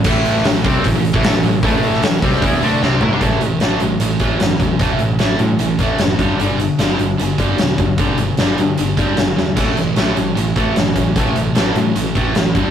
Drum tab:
CC |x---------------|----------------|----------------|----------------|
HH |--o-o-o-o-o-o-o-|o-o-o-o-o-o-----|x-x-x-x-x-x-x-x-|x-x-x-x-x-x-x-x-|
SD |---oo-------o---|---oo--o----o---|----o-------o---|----o-------o---|
FT |----------------|--------------o-|----------------|----------------|
BD |o-----o-o--o----|o-----o-o-------|o---------o---o-|o---------o---o-|

CC |----------------|----------------|x---------------|----------------|
HH |x-x-x-x-x-x-x-x-|x-x-x-x-x-x-x---|x-x-x-x-x-x-x-x-|x-x-x-x-x-x-x-x-|
SD |----o-------o---|----o-------o-o-|----o-------o---|----o-------o---|
FT |----------------|----------------|----------------|----------------|
BD |----------o---o-|o---------o-----|o---------o---o-|o---------o---o-|